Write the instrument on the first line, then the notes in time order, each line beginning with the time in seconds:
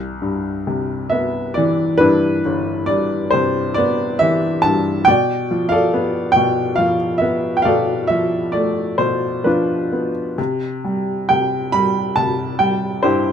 upright piano
Already playing: C2
0.22 G2
0.67 C3
1.10 B3 E5
1.54 E3 D5
1.98 G2 D4 E4 B4
2.45 G1
2.86 G2 D5
3.31 C3 C5
3.74 B3 D5
4.19 E3 E5
4.62 G2 A5
5.05 B2 D5 G5
5.51 F3
5.69 A4 D5 F5
5.94 B3
6.32 G5
6.36 B2
6.76 F3 F5
7.18 B3 E5
7.57 G5
7.62 B2 A4 D5 F5
8.07 F3 E5
8.52 A3 D5
8.98 B2 C5
9.44 F3 D4 F4 B4
9.92 B3
10.38 C3
10.84 G3
11.29 C3 G5
11.72 G3 B5
12.16 C3 A5
12.59 G3 G5
13.03 G2 E4 G4 C5